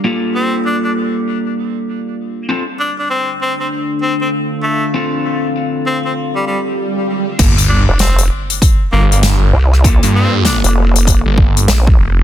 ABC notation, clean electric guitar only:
X:1
M:4/4
L:1/8
Q:"Swing 16ths" 1/4=98
K:Gm
V:1 name="Clean electric guitar"
[B,FGA]8 | [CDFA] z6 z | [CDFA]8 | [B,FGA] z6 z |
[B,FGA]8 |]